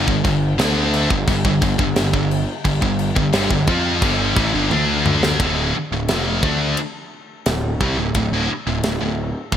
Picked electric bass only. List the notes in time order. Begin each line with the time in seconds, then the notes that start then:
0.08 G1
0.25 G1
0.59 D2
1.11 G1
1.27 G1
1.45 G1
1.62 G1
1.79 G1
1.96 G1
2.14 G1
2.65 G1
2.82 G1
3.16 G1
3.34 G1
3.51 G1
3.68 F2
4.02 G1
4.36 A1
4.54 G1
4.72 D2
5.40 D1
5.75 muted picked electric bass stroke
5.92 D1
6.10 F1
6.43 D2
7.47 D1
7.81 C2
7.98 D1
8.15 D1
8.32 D1
8.50 muted picked electric bass stroke
8.67 D1
8.84 D1
9.01 D1
9.52 D1